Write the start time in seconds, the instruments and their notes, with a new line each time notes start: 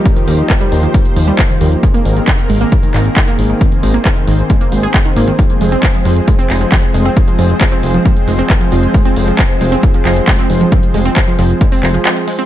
Already playing: supersaw synth F3 A#3 D#4 G4
0.06 supersaw synth C5, kick, closed hi-hat
0.16 synth pluck D#3, closed hi-hat
0.28 analog synth bass D#2, synth pluck D#3, open hi-hat
0.39 closed hi-hat
0.50 synth pluck F3, kick, clap, closed hi-hat
0.61 synth pluck G3, closed hi-hat
0.72 analog synth bass D#2, open hi-hat
0.83 synth pluck D#3, closed hi-hat
0.94 synth pluck D#3, kick, closed hi-hat
1.06 closed hi-hat
1.16 analog synth bass D#2, synth pluck F3, open hi-hat
1.28 synth pluck G3, closed hi-hat
1.39 kick, clap, closed hi-hat
1.50 synth pluck D#3, closed hi-hat
1.61 analog synth bass D#2, synth pluck D#3, open hi-hat
1.72 closed hi-hat
1.83 supersaw synth D#3 C4 G#4 A#4, synth pluck G#3, kick, closed hi-hat
1.94 synth pluck A#3, closed hi-hat
2.05 analog synth bass G#1, open hi-hat
2.16 synth pluck D#3, closed hi-hat
2.28 synth pluck D#3, kick, clap, closed hi-hat
2.39 closed hi-hat
2.50 analog synth bass G#1, synth pluck G#3, open hi-hat
2.61 synth pluck A#3, closed hi-hat
2.72 kick, closed hi-hat
2.83 synth pluck D#3, closed hi-hat
2.94 analog synth bass G#1, synth pluck D#3, clap, open hi-hat
3.06 closed hi-hat
3.17 synth pluck G#3, kick, clap, open hi-hat
3.28 synth pluck A#3, closed hi-hat
3.39 analog synth bass G#1, open hi-hat
3.50 synth pluck D#3, closed hi-hat
3.61 synth pluck D#3, supersaw synth C5, kick, closed hi-hat
3.72 closed hi-hat
3.83 analog synth bass G#1, synth pluck G#3, open hi-hat
3.94 synth pluck A#3, closed hi-hat
4.05 kick, clap, closed hi-hat
4.17 synth pluck D#3, closed hi-hat
4.28 analog synth bass G#1, synth pluck D#3, open hi-hat
4.39 closed hi-hat
4.50 synth pluck G#3, kick, closed hi-hat
4.61 synth pluck A#3, closed hi-hat
4.72 analog synth bass G#1, open hi-hat
4.83 synth pluck G#4, closed hi-hat
4.94 synth pluck C4, kick, clap, closed hi-hat
5.05 synth pluck D#3, closed hi-hat
5.17 analog synth bass G#1, synth pluck A#3, open hi-hat
5.28 synth pluck D#3, closed hi-hat
5.39 synth pluck F3, supersaw synth F3 G#3, kick, closed hi-hat
5.50 closed hi-hat
5.61 analog synth bass F1, synth pluck G#3, open hi-hat
5.72 synth pluck C4, closed hi-hat
5.83 kick, clap, closed hi-hat
5.94 synth pluck F3, closed hi-hat
6.05 analog synth bass F1, synth pluck F3, open hi-hat
6.17 closed hi-hat
6.28 synth pluck G#3, kick, closed hi-hat
6.39 synth pluck C4, closed hi-hat
6.50 analog synth bass F1, clap, open hi-hat
6.61 synth pluck F3, closed hi-hat
6.72 kick, clap, open hi-hat
6.83 closed hi-hat
6.94 analog synth bass F1, synth pluck G#3, open hi-hat
7.05 synth pluck C4, closed hi-hat
7.17 kick, closed hi-hat
7.28 synth pluck F3, closed hi-hat
7.39 analog synth bass F1, synth pluck F3, open hi-hat
7.50 closed hi-hat
7.61 synth pluck G#3, kick, clap, closed hi-hat
7.72 synth pluck C4, closed hi-hat
7.83 analog synth bass F1, open hi-hat
7.94 synth pluck F3, closed hi-hat
8.05 synth pluck F3, kick, closed hi-hat
8.17 closed hi-hat
8.28 analog synth bass F1, synth pluck G#3, open hi-hat
8.39 synth pluck C4, closed hi-hat
8.50 kick, clap, closed hi-hat
8.61 synth pluck F3, closed hi-hat
8.72 analog synth bass F1, synth pluck F3, open hi-hat
8.83 closed hi-hat
8.94 synth pluck G#3, kick, closed hi-hat
9.05 synth pluck C4, closed hi-hat
9.17 analog synth bass F1, open hi-hat
9.28 synth pluck F3, closed hi-hat
9.39 synth pluck F3, kick, clap, closed hi-hat
9.50 closed hi-hat
9.61 analog synth bass F1, synth pluck G#3, open hi-hat
9.72 synth pluck C4, closed hi-hat
9.83 kick, closed hi-hat
9.94 synth pluck F3, closed hi-hat
10.05 analog synth bass F1, synth pluck F3, clap, open hi-hat
10.17 closed hi-hat
10.28 synth pluck G#3, kick, clap, open hi-hat
10.39 synth pluck C4, closed hi-hat
10.50 analog synth bass F1, open hi-hat
10.61 synth pluck F3, closed hi-hat
10.72 synth pluck F3, kick, closed hi-hat
10.83 closed hi-hat
10.94 analog synth bass F1, synth pluck G#3, open hi-hat
11.05 synth pluck C4, closed hi-hat
11.17 kick, clap, closed hi-hat
11.28 synth pluck F3, closed hi-hat
11.39 analog synth bass F1, synth pluck F3, open hi-hat
11.50 closed hi-hat
11.61 synth pluck G#3, kick, closed hi-hat
11.72 synth pluck C4, open hi-hat
11.83 analog synth bass F1, clap, open hi-hat
11.94 synth pluck F3, closed hi-hat
12.05 synth pluck F3, clap, closed hi-hat
12.17 closed hi-hat
12.28 synth pluck G#3, open hi-hat
12.39 synth pluck C4, closed hi-hat